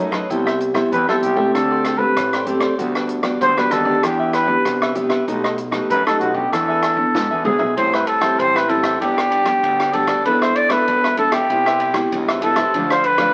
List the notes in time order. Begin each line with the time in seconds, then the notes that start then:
Already playing: F#2 D#4 A4
0.00 F#3 A3 D#4 B4 D#5
0.11 A4 B4 D#5, kick, cross-stick
0.29 C2 C3 G3 B3 E4 A4 C5 E5 G5, kick, closed hi-hat
0.46 C5 E5 G5, cross-stick
0.60 muted cavaquinho stroke, closed hi-hat
0.74 G3 B3 E4 C5 E5 G5, kick, cross-stick, closed hi-hat
0.92 E2 C3 A4 B4 C5 E5 G5, kick, closed hi-hat
1.08 G3 B3 E4 A4 C5 E5 G5, cross-stick
1.22 C2 G4, closed hi-hat
1.36 A3 C4 G4 C5 E5 G5, kick
1.54 D2 D3 D4 G4 A4 C5 D5, kick, cross-stick, closed hi-hat
1.71 G4 C5 D5
1.84 D4 G4 C5 D5, cross-stick, closed hi-hat
1.98 A3 C4 G4 B4, muted cavaquinho stroke, kick
2.16 A1 A2, kick, cross-stick, closed hi-hat
2.33 G4 C5 D5, cross-stick, closed hi-hat
2.46 A3 C4 D4 G4 C5 D5, closed hi-hat
2.60 G4 C5 D5, kick, cross-stick, closed hi-hat
2.78 D2 D3 G3 B3 F#4 G4 B4 D5, kick, closed hi-hat
2.95 G4 B4 D5, cross-stick
3.08 muted cavaquinho stroke, closed hi-hat
3.23 G3 B3 F#4 G4 B4 D5, kick, cross-stick, closed hi-hat
3.41 D2 D3 F#4 G4 B4 C5 D5, kick, closed hi-hat
3.57 G3 B3 F#4 G4 B4 D5, cross-stick
3.71 D#2 A4, cross-stick, closed hi-hat
3.85 B3 D4 G4 B4 D5, kick
4.03 E2 E3 D4 G4 B4 E5, kick, cross-stick, closed hi-hat
4.19 G4 B4 E5
4.33 D4 G4 B4 E5, cross-stick, closed hi-hat
4.46 B3 D4 G4, muted cavaquinho stroke, kick
4.65 C2 B2, kick, cross-stick, closed hi-hat
4.82 G4 B4 E5, cross-stick
4.95 B3 D4 G4 B4 E5, closed hi-hat
5.09 G4 B4 E5, kick, cross-stick
5.27 B1 B2 A3 D#4 G4 A4 B4 D#5, kick, closed hi-hat
5.44 A4 B4 D#5, cross-stick
5.58 muted cavaquinho stroke, closed hi-hat
5.71 A3 D#4 G4 A4 B4 D#5, kick, cross-stick, closed hi-hat
5.90 F#2 D#4 A4 B4 D#5, kick, closed hi-hat
6.06 A3 D#4 G4 A4 B4 D#5, cross-stick
6.19 B1 F#4, closed hi-hat
6.34 B3 D4 G4 A4 B4 D#5, kick
6.52 E2 E3 D4 G#4 A4 B4 E5, kick, cross-stick, closed hi-hat
6.68 G#4 B4 E5
6.82 D4 G#4 B4 E5, cross-stick, closed hi-hat
6.97 B3 D4, muted cavaquinho stroke, kick
7.14 G#2 B2, kick, snare
7.31 E2 G#4 B4 E5
7.44 D2 B3 D4 G#4 B4 E5, mid tom
7.58 B1 G#4 B4 E5, floor tom
7.76 A1 A2 G3 C4 E4 A4 C5 E5 G5, kick, ride
7.93 B4 C5 E5 G5, cross-stick
8.07 A4, muted cavaquinho stroke, ride
8.21 G3 C4 E4 C5 E5 G5, kick, cross-stick, ride
8.39 A1 E3 A4 C5 E5 G5, kick, ride
8.55 B4 C5 E5 G5, cross-stick
8.68 G3 C4 E4 A4, ride
8.81 A1 C5 E5 G5, kick, cross-stick, ride
9.01 G1 G2 G3 B3 D4 G4 B4 D5, kick, ride
9.17 G4 B4 D5, cross-stick
9.30 D4 G4 B4 D5, ride
9.45 G3 B3 D4, muted cavaquinho stroke, kick, cross-stick, ride
9.63 D2 D3, kick, ride
9.79 G4 B4 D5, cross-stick
9.93 G3 B3 D4 G4 A4 B4 D5, ride
10.07 G4 B4 D5, kick, cross-stick, ride
10.25 E1 E3 B3 D4 A4 B4 E5, kick, ride
10.42 A4 B4 C5 E5, cross-stick
10.55 D5, ride
10.69 B3 D4 A4 B4 E5, kick, cross-stick, ride
10.88 E1 B2 D4 A4 B4 E5, kick, ride
11.04 A4 B4 E5, cross-stick
11.17 B3 D4 A4, ride
11.29 E1 G4 A4 B4 E5, kick, cross-stick, ride
11.50 C2 C3 B3 E4 G4 B4 C5 E5, kick, ride
11.66 B4 C5 E5, cross-stick
11.79 E4 B4 C5 E5, ride
11.94 B3 E4 G4, muted cavaquinho stroke, kick, cross-stick, ride
12.12 C#2 G2, kick, ride
12.28 B4 C5 E5, cross-stick
12.42 B3 E4 G4 A4 B4 C5 E5, ride
12.56 B4 C5 E5, kick, cross-stick, ride
12.74 D2 D3 F3 A3 D4 A4 D5 F5, kick, ride
12.90 A4 C5 D5 F5, cross-stick
13.04 B4, muted cavaquinho stroke, ride
13.18 F3 A3 D4 A4 D5 F5, kick, cross-stick, ride